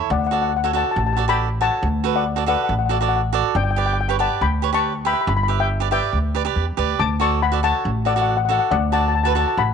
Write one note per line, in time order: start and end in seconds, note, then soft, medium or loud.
0.00 0.10 A4 medium
0.00 0.11 C#5 medium
0.10 0.82 D2 loud
0.10 0.18 D5 medium
0.10 0.18 F#5 medium
0.19 0.25 F#5 medium
0.26 0.33 F#5 medium
0.31 0.51 F#4 medium
0.31 0.51 A4 medium
0.31 0.52 D5 medium
0.31 0.41 F#5 medium
0.42 0.48 F#5 medium
0.49 0.55 F#5 medium
0.57 0.63 F#5 medium
0.64 0.70 F#4 medium
0.64 0.71 A4 medium
0.64 0.71 C#5 medium
0.64 0.71 F#5 medium
0.73 1.00 F#4 medium
0.73 1.01 A4 medium
0.73 1.01 D5 medium
0.73 0.83 F#5 medium
0.73 0.83 A5 medium
0.84 0.90 A5 medium
0.91 0.97 A5 medium
0.96 1.68 A1 loud
0.96 1.05 A5 medium
1.07 1.12 A5 medium
1.13 1.24 F#4 medium
1.13 1.21 A5 medium
1.17 1.24 A4 medium
1.17 1.25 D5 medium
1.28 1.48 F#4 medium
1.28 1.48 A4 medium
1.28 1.49 D5 medium
1.28 1.59 G5 medium
1.28 1.62 B5 loud
1.61 1.87 F#4 medium
1.61 1.87 A4 medium
1.61 1.88 C#5 medium
1.61 2.12 F#5 medium
1.61 2.12 A5 loud
1.83 2.54 D2 loud
2.04 2.23 F#4 medium
2.04 2.24 A4 medium
2.04 2.24 B4 medium
2.16 2.45 D5 medium
2.16 2.47 F#5 medium
2.36 2.43 F#4 medium
2.36 2.43 A4 medium
2.36 2.44 D5 medium
2.46 2.73 F#4 medium
2.46 2.73 A4 medium
2.46 2.73 B4 medium
2.46 2.55 D5 medium
2.46 2.55 F#5 medium
2.56 2.62 F#5 medium
2.64 2.69 F#5 medium
2.69 3.41 A1 loud
2.69 2.77 F#5 medium
2.79 2.84 F#5 medium
2.86 2.96 F#4 medium
2.86 2.92 F#5 medium
2.90 2.97 A4 medium
2.90 2.97 D5 medium
2.90 3.00 F#5 medium
3.01 3.20 F#4 medium
3.01 3.21 A4 medium
3.01 3.21 D5 medium
3.01 3.08 F#5 medium
3.09 3.15 F#5 medium
3.16 3.23 F#5 medium
3.33 3.54 F#4 medium
3.33 3.55 A4 medium
3.33 3.55 D5 medium
3.55 4.27 G1 loud
3.55 3.63 D5 medium
3.55 3.62 G5 medium
3.64 3.69 G5 medium
3.71 3.78 G5 medium
3.76 3.96 G4 medium
3.76 3.96 B4 medium
3.76 3.96 D5 medium
3.76 3.85 G5 medium
3.86 3.92 G5 medium
3.93 3.99 G5 medium
4.01 4.07 G5 medium
4.08 4.15 G4 medium
4.08 4.15 B4 medium
4.08 4.16 C#5 medium
4.08 4.16 G5 medium
4.19 4.45 G4 medium
4.19 4.45 B4 medium
4.19 4.46 D5 medium
4.19 4.40 F#5 medium
4.19 4.42 A5 medium
4.41 5.13 D2 loud
4.41 4.72 G5 medium
4.41 4.75 B5 loud
4.62 4.69 G4 medium
4.62 4.69 B4 medium
4.62 4.70 C#5 medium
4.73 4.92 G4 medium
4.73 4.93 B4 medium
4.73 4.93 C#5 medium
4.73 5.04 A5 medium
4.73 5.07 C#6 loud
5.05 5.31 G4 medium
5.05 5.32 B4 medium
5.05 5.32 E5 medium
5.05 5.13 G5 medium
5.05 5.12 B5 loud
5.13 5.20 B5 medium
5.21 5.28 B5 medium
5.27 5.99 G1 loud
5.27 5.35 B5 medium
5.37 5.42 B5 medium
5.43 5.51 B5 medium
5.48 5.68 G4 medium
5.48 5.68 B4 medium
5.48 5.68 E5 medium
5.60 5.90 E5 medium
5.60 5.91 G5 medium
5.80 5.87 G4 medium
5.80 5.87 B4 medium
5.80 5.88 D5 medium
5.91 6.17 G4 medium
5.91 6.17 B4 medium
5.91 6.18 D5 medium
5.91 6.74 E5 medium
5.91 6.74 G5 loud
6.13 6.49 D2 medium
6.35 6.41 G4 medium
6.35 6.42 B4 medium
6.35 6.42 D5 medium
6.45 6.64 G4 medium
6.45 6.65 B4 medium
6.45 6.65 D5 medium
6.56 6.75 E2 medium
6.77 6.97 D2 medium
6.77 6.99 G4 medium
6.77 6.99 B4 medium
6.77 7.00 D5 loud
6.99 7.71 D2 loud
6.99 7.19 A5 medium
6.99 7.22 D6 loud
7.20 7.40 F#4 medium
7.20 7.40 A4 medium
7.20 7.41 D5 medium
7.20 7.41 A5 medium
7.20 7.43 C#6 loud
7.42 7.63 F#5 medium
7.42 7.65 B5 loud
7.52 7.59 F#4 medium
7.52 7.59 A4 medium
7.52 7.60 D5 medium
7.63 7.89 F#4 medium
7.63 7.90 A4 medium
7.63 7.90 C#5 medium
7.63 8.04 F#5 medium
7.63 8.08 A5 medium
7.85 8.57 A1 loud
8.05 8.13 F#4 medium
8.05 8.13 A4 medium
8.05 8.14 D5 medium
8.05 8.14 F#5 medium
8.15 8.36 F#4 medium
8.15 8.37 A4 medium
8.15 8.37 D5 medium
8.15 8.20 F#5 medium
8.22 8.28 F#5 medium
8.29 8.36 F#5 medium
8.37 8.44 F#5 medium
8.45 8.75 F#4 medium
8.45 8.50 F#5 medium
8.49 8.76 A4 medium
8.49 8.76 D5 medium
8.49 8.58 F#5 medium
8.59 8.66 F#5 medium
8.71 9.43 D2 loud
8.71 8.92 D5 medium
8.71 8.92 F#5 medium
8.92 9.12 F#4 medium
8.92 9.12 A4 medium
8.92 9.13 D5 medium
8.92 9.00 F#5 medium
8.92 8.99 A5 loud
9.00 9.07 A5 medium
9.08 9.14 A5 medium
9.15 9.22 A5 medium
9.24 9.32 F#4 medium
9.24 9.32 A4 medium
9.24 9.32 B4 medium
9.24 9.31 A5 medium
9.32 9.62 F#4 medium
9.32 9.62 A4 medium
9.32 9.38 A5 medium
9.36 9.62 D5 medium
9.36 9.47 A5 medium
9.48 9.55 A5 medium
9.57 9.74 A1 loud
9.57 9.74 F#5 medium
9.57 9.74 B5 loud